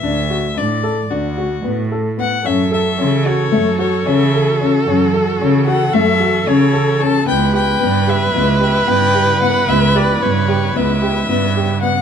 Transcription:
<<
  \new Staff \with { instrumentName = "Violin" } { \time 9/8 \key fis \phrygian \tempo 4. = 75 e''4 d''4 fis'4. r8 fis''8 | e''8 e''4 cis''4 cis''8 e''4 r8 | r4. fis''8 e''4 cis''4 a''8 | g''8 g''4 e''4 e''8 g''4 fis''8 |
e''8 d''8 cis''4 e''2 fis''8 | }
  \new Staff \with { instrumentName = "Viola" } { \time 9/8 \key fis \phrygian r1 r8 | a'1~ a'8~ | a'1~ a'8 | b'1~ b'8~ |
b'1 r8 | }
  \new Staff \with { instrumentName = "Grand piano" } { \time 9/8 \key fis \phrygian d'8 fis'8 d'8 a'8 d'8 fis'8 b8 a'8 b8 | cis'8 a'8 cis'8 fis'8 a8 fis'8 cis'8 a'8 cis'8 | cis'8 a'8 cis'8 fis'8 a8 fis'8 cis'8 a'8 cis'8 | b8 g'8 b8 g'8 b8 g'8 b8 g'8 b8 |
b8 g'8 b8 g'8 b8 g'8 b8 g'8 b8 | }
  \new Staff \with { instrumentName = "String section" } { \time 9/8 \key fis \phrygian r1 r8 | <e a fis'>1~ <e a fis'>8~ | <e a fis'>1~ <e a fis'>8 | <cis b e'>1~ <cis b e'>8~ |
<cis b e'>1~ <cis b e'>8 | }
  \new Staff \with { instrumentName = "Cello" } { \clef bass \time 9/8 \key fis \phrygian d,4 a,4 d,4 a,4. | fis,4 cis4 fis,4 cis4. | fis,4 cis4 fis,4 cis4. | cis,4 g,4 cis,4 g,4. |
cis,4 g,4 cis,4 g,4. | }
>>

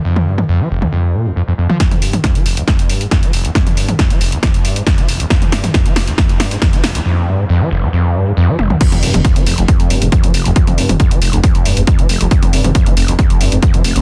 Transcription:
<<
  \new Staff \with { instrumentName = "Acid bass" } { \clef bass \time 4/4 \key f \minor \tempo 4 = 137 f,8 g,16 aes,16 f,16 f16 f,,16 f,16 f,8 bes,16 f,16 f,16 f,16 f,16 f16 | f,8 g,16 aes,16 f,16 f16 f,,16 f,16 f,8 g,16 aes,16 f,16 f16 f,,16 f,16 | f,8 g,16 aes,16 f,16 f16 f,,16 f,16 f,8 g,16 aes,16 f,16 f16 f,,16 f,16 | f,8 g,16 aes,16 f,16 f16 f,,16 f,16 f,8 g,16 aes,16 f,16 f16 f,,16 f,16 |
f,8 g,16 aes,16 f,16 f16 f,,16 f,16 f,8 g,16 aes,16 f,16 f16 f,,16 f,16 | f,8 g,16 aes,16 f,16 f16 f,,16 f,16 f,8 g,16 aes,16 f,16 f16 f,,16 f,16 | f,8 g,16 aes,16 f,16 f16 f,,16 f,16 f,8 g,16 aes,16 f,16 f16 f,,16 f,16 | f,8 g,16 aes,16 f,16 f16 f,,16 f,16 f,8 g,16 aes,16 f,16 f16 f,,16 f,16 | }
  \new Staff \with { instrumentName = "Detuned saw bass" } { \clef bass \time 4/4 \key f \minor r1 | r1 | r1 | r1 |
r1 | r16 f,,16 f,,16 f,,16 r16 f,,16 f,,16 f,,16 r16 f,,16 f,,16 f,,16 r16 f,16 f,,16 f,,16 | r16 f,,16 f,,16 f,,16 r16 f,,16 f,,16 f,,16 r16 f,,16 f,,16 f,,16 r16 f,,16 f,,16 f,,16 | r16 f,,16 f,,16 f,,16 r16 f,,16 f,,16 f,,16 r16 f,,16 f,,16 f,,16 r16 f,16 f,,16 f,,16 | }
  \new DrumStaff \with { instrumentName = "Drums" } \drummode { \time 4/4 r16 toml8 toml16 r8. toml16 r4 r8. toml16 | <hh bd sn>16 <hh toml>16 hho16 <hh toml>16 <hh bd sn>16 hh16 hho16 hh16 <hh bd sn>16 hh16 hho16 hh16 <hh bd sn>16 hh16 hho16 hh16 | <hh bd sn>16 <hh toml>16 hho16 <hh toml>16 <hh bd sn>16 hh16 hho16 hh16 <hh bd sn>16 hh16 hho16 hh16 <hh bd sn>16 hh16 hho16 hh16 | <hh bd sn>16 <hh toml>16 <hho sn>16 <hh toml>16 <hh bd sn>16 hh16 <hho sn>16 hh16 <hh bd sn>16 hh16 <hho sn>16 hh16 <hh bd sn>16 hh16 <hho sn>16 hh16 |
r4 r4 r4 r8 tommh16 toml16 | <cymc hh bd>16 <hh toml>16 hho16 <hh toml>16 <hh bd>16 hh16 hho16 hh16 <hh bd>16 hh16 hho16 hh16 <hh bd>16 hh16 hho16 hh16 | <hh bd>16 <hh toml>16 hho16 <hh toml>16 <hh bd>16 hh16 hho16 hh16 <hh bd>16 hh16 hho16 hh16 <hh bd>16 hh16 hho16 hh16 | <hh bd>16 <hh toml>16 hho16 <hh toml>16 <hh bd>16 hh16 hho16 hh16 <hh bd>16 hh16 hho16 hh16 <hh bd>16 hh16 hho16 hh16 | }
>>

